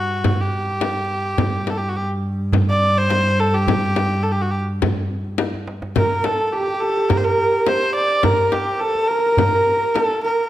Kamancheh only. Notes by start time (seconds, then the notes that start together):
Already playing: F#4
0.41 G4
1.70 A4
1.78 G4
1.89 F#4
1.97 G4
2.70 D5
2.98 C5
3.40 A4
3.54 G4
4.23 A4
4.32 G4
4.42 F#4
4.51 G4
5.96 A#4
6.25 A4
6.47 A4
6.52 G4
6.80 A4
7.09 A#4
7.17 C5
7.24 A#4
7.68 C5
7.95 D5
8.24 A#4
8.52 G4
8.79 A4
9.07 A#4
9.94 A4
10.24 A#4